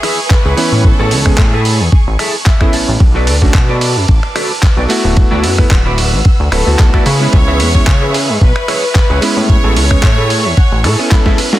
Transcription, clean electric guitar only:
0.03 0.18 E4 loud
0.03 0.18 G#4 loud
0.03 0.18 B4 medium
0.03 0.18 E5 loud
0.30 muted clean electric guitar stroke soft
0.45 0.58 E4 medium
0.45 0.58 G#4 medium
0.45 0.58 B4 medium
0.45 0.58 C#5 medium
0.72 muted clean electric guitar stroke soft
0.99 1.19 E4 loud
0.99 1.19 G#4 loud
0.99 1.19 A4 loud
0.99 1.19 C#5 loud
1.53 1.86 E4 medium
1.53 1.86 G#4 medium
1.53 1.87 A4 medium
1.53 1.87 B4 loud
2.19 2.34 E4 medium
2.19 2.34 G#4 loud
2.19 2.34 A4 loud
2.19 2.34 E5 loud
2.46 2.60 E5 medium
2.46 muted clean electric guitar stroke soft
2.61 2.73 E4 medium
2.61 2.74 G#4 medium
2.61 2.74 A4 medium
2.61 2.74 E5 medium
2.73 2.99 A5 medium
2.88 muted clean electric guitar stroke soft
3.15 3.35 F#4 loud
3.15 3.35 A4 medium
3.15 3.35 B4 loud
3.15 3.35 D5 loud
3.54 muted clean electric guitar stroke soft
3.69 4.02 F#4 medium
3.69 4.02 A4 medium
3.69 4.03 B4 medium
3.69 4.03 D5 medium
4.35 4.50 F#4 loud
4.35 4.50 A4 medium
4.35 4.51 B4 loud
4.35 4.51 D5 loud
4.62 muted clean electric guitar stroke soft
4.77 4.90 F#4 medium
4.77 4.90 A4 medium
4.77 4.90 B4 medium
4.77 4.90 D5 medium
5.04 muted clean electric guitar stroke soft
5.31 5.51 E4 loud
5.31 5.51 F#4 loud
5.31 5.51 B4 loud
5.31 5.51 D5 loud
5.70 muted clean electric guitar stroke soft
5.85 6.19 E4 medium
5.85 6.19 F#4 medium
5.85 6.19 B4 medium
5.85 6.19 D5 medium
6.52 6.67 E4 loud
6.52 6.67 F#4 loud
6.52 6.67 B4 loud
6.52 6.67 C#5 loud
6.93 7.04 E4 medium
6.93 7.05 F#4 medium
6.93 7.05 B4 medium
6.93 7.06 D5 medium
7.06 7.39 E4 medium
7.06 7.39 G#4 medium
7.06 7.39 B4 medium
7.06 7.39 C#5 loud
7.47 7.67 E4 loud
7.47 7.67 G#4 loud
7.47 7.67 B4 loud
7.47 7.68 E5 loud
8.02 8.35 E4 medium
8.02 8.35 G#4 medium
8.02 8.35 B4 medium
8.02 8.35 E5 medium
8.68 8.83 E4 loud
8.68 8.83 G#4 loud
8.68 8.83 B4 loud
8.68 8.83 C#5 loud
9.10 9.22 E4 medium
9.10 9.22 G#4 medium
9.10 9.23 B4 medium
9.10 9.23 C#5 medium
9.37 muted clean electric guitar stroke soft
9.64 9.84 E4 loud
9.64 9.84 G#4 loud
9.64 9.84 A4 loud
9.64 9.84 C#5 loud
10.04 muted clean electric guitar stroke soft
10.18 10.51 E4 medium
10.18 10.51 G#4 medium
10.18 10.51 A4 medium
10.18 10.30 B4 medium
10.30 10.44 C#5 medium
10.45 10.57 E5 medium
10.57 10.96 F#5 medium
10.84 10.99 E4 loud
10.84 10.99 G#4 medium
10.84 10.99 A4 loud
10.84 10.99 C#5 loud
10.99 11.11 G#5 medium
11.11 11.59 B5 medium
11.11 muted clean electric guitar stroke soft
11.25 11.38 E4 medium
11.25 11.38 G#4 medium
11.25 11.39 A4 medium
11.25 11.39 E5 loud
11.53 muted clean electric guitar stroke soft

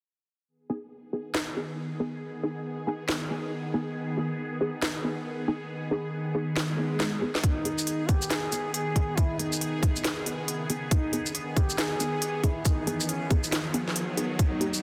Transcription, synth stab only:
0.70 0.79 B3 medium
0.70 0.79 D#4 medium
0.70 0.79 G#4 medium
1.13 1.23 B3 medium
1.13 1.23 D#4 medium
1.13 1.23 G#4 medium
1.57 1.71 B3 medium
1.57 1.71 D#4 medium
1.57 1.71 G#4 medium
2.00 2.15 B3 medium
2.00 2.15 D#4 medium
2.00 2.15 G#4 loud
2.43 2.53 B3 medium
2.43 2.53 D#4 medium
2.43 2.53 G#4 medium
2.87 2.97 B3 medium
2.87 2.97 D#4 medium
2.87 2.97 G#4 medium
3.30 3.45 B3 medium
3.30 3.45 D#4 medium
3.30 3.45 G#4 medium
3.74 3.89 B3 medium
3.74 3.89 D#4 medium
3.74 3.89 G#4 loud
4.17 4.27 B3 medium
4.17 4.27 D#4 medium
4.17 4.27 G#4 loud
4.61 4.70 B3 medium
4.61 4.70 D#4 medium
4.61 4.70 G#4 medium
5.04 5.19 B3 medium
5.04 5.19 D#4 medium
5.04 5.19 G#4 medium
5.48 5.62 B3 medium
5.48 5.62 D#4 medium
5.48 5.62 G#4 loud
5.91 6.01 B3 medium
5.91 6.01 D#4 medium
5.91 6.01 G#4 loud
6.35 6.44 B3 medium
6.35 6.44 D#4 medium
6.35 6.44 G#4 medium
6.78 6.93 B3 medium
6.78 6.93 D#4 medium
6.78 6.93 G#4 medium
7.22 7.36 B3 medium
7.22 7.36 D#4 medium
7.22 7.36 G#4 loud
7.65 7.75 B3 medium
7.65 7.75 D#4 medium
7.65 7.75 G#4 medium
8.09 8.18 B3 medium
8.09 8.18 D#4 medium
8.09 8.18 G#4 medium
8.52 8.67 B3 medium
8.52 8.67 D#4 medium
8.52 8.67 G#4 medium
8.96 9.10 B3 medium
8.96 9.10 D#4 medium
8.96 9.10 G#4 loud
9.39 9.49 B3 medium
9.39 9.49 D#4 medium
9.39 9.49 G#4 loud
9.83 9.92 B3 medium
9.83 9.92 D#4 medium
9.83 9.92 G#4 medium
10.26 10.41 B3 medium
10.26 10.41 D#4 medium
10.26 10.41 G#4 medium
10.70 10.84 B3 medium
10.70 10.84 D#4 medium
10.70 10.84 G#4 loud
11.13 11.23 B3 medium
11.13 11.23 D#4 medium
11.13 11.23 G#4 loud
11.57 11.66 B3 medium
11.57 11.66 D#4 medium
11.57 11.66 G#4 medium
12.00 12.15 B3 medium
12.00 12.15 D#4 medium
12.00 12.15 G#4 medium
12.43 12.58 B3 medium
12.43 12.58 D#4 medium
12.43 12.58 G#4 loud
12.87 12.97 B3 medium
12.87 12.97 D#4 medium
12.87 12.97 G#4 loud
13.31 13.40 B3 medium
13.31 13.40 D#4 medium
13.31 13.40 G#4 medium
13.74 13.83 B3 medium
13.74 13.84 D#4 medium
13.74 13.84 G#4 loud
14.17 14.32 B3 medium
14.17 14.32 D#4 medium
14.17 14.32 G#4 medium
14.61 14.70 A#3 medium
14.61 14.70 D#4 medium
14.61 14.70 G4 medium

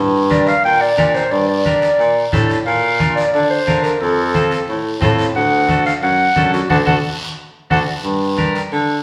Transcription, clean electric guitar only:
0.30 0.54 D4 medium
0.30 0.55 G4 medium
0.30 0.55 A#4 medium
0.97 1.21 D4 medium
0.97 1.22 G4 medium
0.97 1.22 A#4 medium
1.65 1.89 D4 medium
1.65 1.89 G4 medium
1.65 1.90 A#4 medium
2.33 2.56 D4 medium
2.33 2.57 G4 medium
2.33 2.57 A4 medium
3.00 3.24 D4 medium
3.00 3.24 F4 medium
3.00 3.24 A#4 medium
3.67 3.91 D4 medium
3.67 3.91 F4 medium
3.67 3.91 A#4 medium
4.34 4.58 C4 medium
4.34 4.58 F4 medium
4.34 4.58 A4 medium
5.01 5.25 C4 medium
5.01 5.25 F4 medium
5.01 5.26 A4 loud
5.69 5.92 D4 medium
5.69 5.93 F#4 medium
5.69 5.93 A4 medium
6.36 6.60 D4 medium
6.36 6.60 F#4 medium
6.36 6.60 A4 medium
6.70 6.81 D4 loud
6.70 6.81 F#4 medium
6.70 6.81 A4 medium
6.86 6.97 D4 medium
6.86 6.97 F#4 medium
6.86 6.97 A4 loud
7.70 7.82 D4 medium
7.70 7.81 F#4 medium
7.70 7.81 A4 medium
8.38 8.62 D4 medium
8.38 8.62 G4 medium
8.38 8.62 A#4 medium

